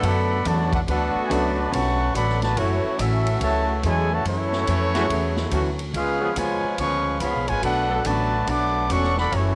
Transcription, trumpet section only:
0.05 A4 D5 F#5 B5
0.47 F#4 B4 D5 A5
0.74 D4 A4 B4 F#5
0.89 D4 A4 B4 F#5
1.26 G#5
1.30 F#4 B4 D5 A5
1.73 B4 F#5 A5 C#6
2.15 A4 D5 F#5 B5
2.43 F#4 B4 D5 A5
2.58 A3 E4 F#4 C#5
3.00 C#4 F#4 A4 E5
3.43 F#4 C#5 E5 A5
3.85 E4 A4 C#5 G#5
4.13 F#4 C#5 E5 A5
4.28 A3 E4 F#4 C#5
5.95 C#4 G#4 B4 F5
6.38 F4 B4 C#5 G#5
6.79 B4 F5 G#5 C#6
7.21 G#4 C#5 F5 B5
7.48 F4 B4 C#5 G#5
7.63 D4 A4 B4 F#5
8.06 F#4 B4 D5 A5
8.49 B4 F#5 A5 D6
8.92 A4 D5 F#5 C#6
9.19 A4 D5 F#5 B5
9.33 A3 E4 F#4 C#5

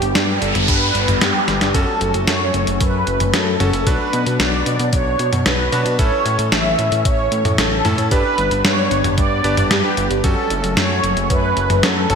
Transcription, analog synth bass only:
0.02 G1
0.15 G2
0.42 G1
0.55 G1
0.68 G2
0.95 G1
1.08 G1
1.22 G2
1.48 G1
1.61 G1
1.74 F#2
2.01 F#1
2.15 F#1
2.28 F#2
2.54 F#1
2.68 F#1
2.81 F#2
3.07 F#1
3.21 F#1
3.34 F#2
3.60 F#1
3.74 F#1
3.87 B1
4.13 B2
4.27 B2
4.40 B1
4.66 B2
4.80 B2
4.93 B1
5.20 B2
5.33 B2
5.46 B1
5.73 B2
5.86 B2
5.99 A1
6.26 A2
6.39 A2
6.52 A1
6.79 A2
6.92 A2
7.05 A1
7.32 A2
7.45 A2
7.58 A1
7.85 A2
7.98 A2
8.12 G2
8.38 G1
8.51 G1
8.65 G2
8.91 G1
9.04 G1
9.18 G2
9.44 G1
9.58 G1
9.71 G2
9.97 G1
10.11 G1
10.24 F#2
10.50 F#1
10.64 F#1
10.77 F#2
11.04 F#1
11.17 F#1
11.30 F#2
11.57 F#1
11.70 F#1
11.83 F#2
12.10 F#1

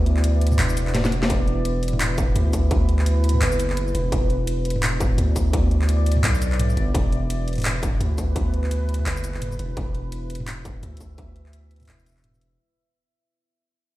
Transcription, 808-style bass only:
Already playing: D2
0.59 E1
1.30 E1
2.36 D2
3.42 F#1
3.95 E1
4.12 E1
5.18 D2
6.24 B1
6.77 G1
6.95 E1
8.01 D2
9.06 F#1
9.59 E1
9.77 E1
10.83 D2
11.89 E1

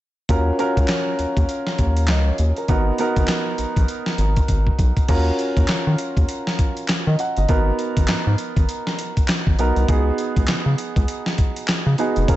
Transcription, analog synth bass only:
0.29 D#2
0.77 C#2
1.19 D#2
1.37 D#2
1.79 D#2
2.09 C#2
2.39 D#2
2.69 G#1
3.16 G#1
3.58 A#1
3.77 A#1
4.18 G#1
4.49 G#1
4.79 B1
5.08 D#2
5.57 D#2
5.69 D#3
5.87 D#3
6.17 D#2
7.07 D#3
7.37 G1
7.49 G#1
7.97 G#1
8.09 G#2
8.27 G#2
8.56 G#1
9.47 G#1
9.58 B1
9.76 C2
9.88 C#2
10.36 C#2
10.48 C#3
10.66 C#3
10.96 C#2
11.86 C#3
12.17 F1
12.28 F#1

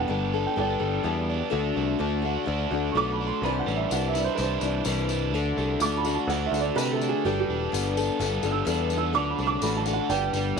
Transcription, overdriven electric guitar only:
Already playing: G3 B3
0.10 D4
0.34 A4
0.57 D4
0.80 G3
1.05 B3
1.30 D4
1.52 D3
1.77 A3
2.00 D4
2.26 F#4
2.48 D4
2.73 D3
2.95 A3
3.21 D4
3.43 C3
3.66 G3
3.90 D4
4.13 E4
4.36 D4
4.60 E3
4.85 G3
5.10 D4
5.33 D3
5.57 A3
5.82 D4
6.06 F#4
6.30 D4
6.54 D3
6.78 A3
7.02 D4
7.26 G3
7.50 D4
7.73 B3
7.98 A4
8.20 B3
8.45 G3
8.70 D4
8.93 B3
9.16 D3
9.40 D4
9.63 F#4
9.88 A4
10.11 G3
10.34 G3

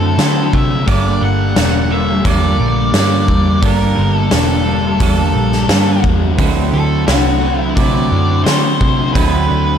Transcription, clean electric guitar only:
Already playing: D3 F#3 C4 E4 A4
0.18 F#3 C4 E4 A4
0.87 G3 A#3 D4 A4
1.56 G3 A#3 D4 A4
1.91 A#3 D4 A4
2.25 G3 A#3 D4 A4
2.94 G3 A#3 D4 A4
3.62 G3 A#3 D4 A4
4.31 G3 A#3 D4 A4
4.66 A#3 D4 A4
5.01 G3 A#3 D4 A4
5.69 G3 A#3 D4 A4
6.38 D3 F#3 C4 E4 A4
7.07 F#3 C4 E4 A4
7.41 C4 E4 A4
7.77 D3 F#3 C4 E4 A4
8.46 F#3 C4 E4 A4
9.15 D3 F#3 C4 E4 A4

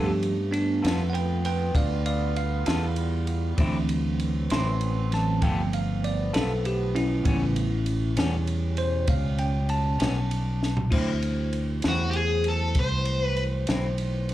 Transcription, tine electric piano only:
Already playing: F3 A3 B3
0.06 G4
0.52 B3 D4
1.10 B4 F#5
1.14 G5
1.45 B4 G5
1.75 D5 F5
2.06 D5 F5
2.37 F5
3.57 E3 F#3 C4
4.51 C6
5.13 E3 F#3 C4 A5
5.41 F3 A3 B3 G5
5.74 F5
6.04 D5
6.34 A4
6.66 G4
6.95 C#4 E4
7.23 C#3 G3 B3
8.78 C5
9.09 F5
9.39 G5
9.70 A5
10.91 A3 E4 F#4 C5

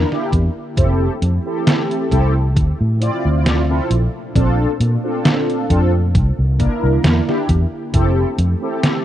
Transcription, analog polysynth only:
0.12 A#3 D4 E4 G4
0.77 C4 E4 G4 A4
1.46 C4 E4 G4 A4
2.11 C4 E4 G4 A4
3.00 C4 E4 F4 D5
3.69 C4 E4 F4 A4
4.35 C4 D4 F4 A4
5.03 C4 D4 F4 A4
5.69 C4 D4 F4 A4
6.58 A#3 D4 E4 A#4
7.27 A#3 D4 E4 G4
7.93 C4 E4 G4 A4
8.62 C4 E4 G4 A4

